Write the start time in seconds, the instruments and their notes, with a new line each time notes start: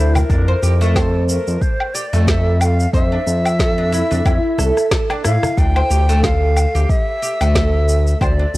Already playing: analog synth bass D2, oud E4, ney C5
0.15 ney A#4, cajon bass, cabasa, low woodblock
0.30 analog synth bass F2, oud D4, kick, cabasa
0.48 oud C5
0.62 analog synth bass F2, oud G4, cajon slap, cabasa
0.81 oud A3, cabasa
0.96 ney A4, oud C5, kick, snare, cabasa, low woodblock
1.28 ney A#4, cabasa
1.48 analog synth bass F2, cabasa
1.61 ney C5, kick, cabasa
1.80 low woodblock
1.94 oud G4, ney D5, cabasa
2.13 analog synth bass F2, oud A3, cabasa
2.27 oud A4, ney E5, kick, snare, cabasa
2.61 ney G5, cabasa, low woodblock
2.65 ney F5
2.80 cabasa
2.93 analog synth bass F2, oud C5, ney E5, kick, cabasa
3.12 oud D4
3.27 analog synth bass F2, cajon slap, cabasa
3.45 cabasa, low woodblock
3.59 oud A4, kick, snare, cabasa
3.78 oud D4
3.92 oud E4, cabasa
4.11 analog synth bass F2, oud D4, cajon bass, cabasa
4.25 analog synth bass F2, oud E4, kick, cajon slap, cabasa, low woodblock
4.58 analog synth bass C2, oud A4, cajon bass, cross-stick, cabasa
4.77 cross-stick, cajon slap, cabasa
4.91 oud A4, kick, cross-stick, snare, cabasa
5.10 oud D4, cross-stick, low woodblock
5.24 analog synth bass A2, oud E4, ney F5, cross-stick, cabasa
5.43 cajon bass, cross-stick, cabasa
5.57 analog synth bass D2, oud D4, ney G5, kick, cabasa
5.76 oud C5, low woodblock
5.90 analog synth bass D2, oud G4, cajon slap, cabasa
6.09 oud A3, cabasa
6.23 oud A4, ney F5, kick, snare, cabasa
6.56 cabasa, low woodblock
6.75 analog synth bass D2, oud G4, cabasa
6.89 ney E5, kick, cabasa
7.22 oud G4, cabasa
7.41 analog synth bass D2, oud A3, cabasa, low woodblock
7.55 oud A4, kick, snare, cabasa
7.89 cabasa
8.07 cabasa
8.21 analog synth bass D2, oud C5, ney D5, kick, cabasa, low woodblock
8.39 oud D4
8.54 analog synth bass D2